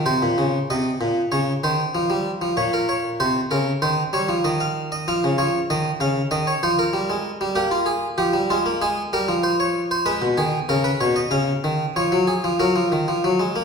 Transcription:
0.06 0.21 C3 medium
0.06 0.67 C5 medium
0.22 0.37 A#2 medium
0.38 0.57 C#3 medium
0.70 0.89 C3 medium
0.70 1.30 D#5 medium
1.01 1.20 A#2 medium
1.32 1.51 C#3 medium
1.32 1.51 C#5 medium
1.64 1.83 D#3 medium
1.64 2.55 C5 medium
1.95 2.10 F3 medium
2.10 2.29 G3 medium
2.42 2.57 F3 medium
2.57 3.18 A#2 medium
2.57 2.72 C#5 medium
2.73 2.88 A#4 medium
2.89 3.08 C#5 medium
3.20 3.39 C3 medium
3.20 3.39 C5 medium
3.51 3.71 C#3 medium
3.51 3.70 A#4 medium
3.82 4.02 D#3 medium
3.82 4.02 C5 medium
4.13 4.28 G3 medium
4.13 4.33 C#5 medium
4.29 4.44 F3 medium
4.44 5.05 D#3 medium
4.44 4.60 D#5 medium
4.60 4.80 F5 medium
4.92 5.07 D#5 medium
5.08 5.23 F3 medium
5.08 5.27 F5 medium
5.24 5.39 C#3 medium
5.38 5.58 F3 medium
5.38 5.58 C#5 medium
5.70 5.89 D#3 medium
5.70 5.89 D#5 medium
6.00 6.20 C#3 medium
6.00 6.20 F5 medium
6.31 6.51 D#3 medium
6.31 6.47 D#5 medium
6.47 6.63 C#5 medium
6.63 6.82 F3 medium
6.63 6.78 C5 medium
6.79 7.54 A#4 medium
6.93 7.09 G3 medium
7.10 7.29 G#3 medium
7.41 7.56 G3 medium
7.55 8.16 A#3 medium
7.55 7.71 G4 medium
7.71 7.87 F4 medium
7.86 8.06 G#4 medium
8.18 8.33 F3 medium
8.18 8.37 G4 medium
8.33 8.49 G3 medium
8.50 8.65 G#3 medium
8.50 8.70 F4 medium
8.66 8.81 A#3 medium
8.82 9.01 G#3 medium
8.82 9.01 G#4 medium
9.13 9.28 G3 medium
9.13 9.32 A#4 medium
9.28 10.04 F3 medium
9.43 9.59 C5 medium
9.60 9.79 C#5 medium
9.91 10.06 C5 medium
10.06 10.21 G#3 medium
10.06 10.25 B4 medium
10.22 10.37 B2 medium
10.37 10.57 D#3 medium
10.37 10.57 G#4 medium
10.69 10.89 C#3 medium
10.69 10.85 A#4 medium
10.84 11.00 B4 medium
11.01 11.20 B2 medium
11.01 11.16 C#5 medium
11.16 11.32 D#5 medium
11.31 11.51 C#3 medium
11.31 11.93 F5 medium
11.64 11.84 D#3 medium
11.96 12.12 F3 medium
11.96 12.16 C#5 medium
12.12 12.32 F#3 medium
12.27 12.47 G#4 medium
12.44 12.60 F3 medium
12.60 12.75 F#3 medium
12.60 13.64 A#4 medium
12.76 12.92 F3 medium
12.92 13.08 D#3 medium
13.08 13.24 F3 medium
13.24 13.40 F#3 medium
13.39 13.56 G#3 medium
13.56 13.64 A#3 medium

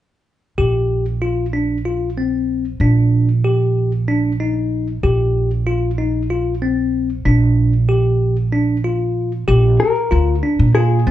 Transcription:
0.58 2.77 A#1 medium
0.58 1.05 G4 medium
1.22 1.45 F4 medium
1.53 1.77 D4 medium
1.85 2.09 F4 medium
2.18 2.64 C4 medium
2.80 4.99 A#1 medium
2.80 3.28 D4 medium
3.44 3.91 G4 medium
4.08 4.31 D4 medium
4.40 4.87 D#4 medium
5.03 7.22 A#1 medium
5.03 5.50 G4 medium
5.67 5.90 F4 medium
5.98 6.22 D#4 medium
6.30 6.54 F4 medium
6.62 7.09 C4 medium
7.25 9.44 A#1 medium
7.25 7.72 D4 medium
7.89 8.36 G4 medium
8.53 8.76 D4 medium
8.85 9.31 F4 medium
9.48 9.78 A#1 medium
9.48 9.95 G4 medium
9.80 10.71 A#4 medium
10.11 10.41 D2 medium
10.11 10.35 F4 medium
10.43 10.66 D4 medium
10.59 11.03 A#2 medium
10.75 10.98 F4 medium
10.75 11.11 G#4 medium
11.07 11.11 A#1 medium
11.07 11.11 C4 medium

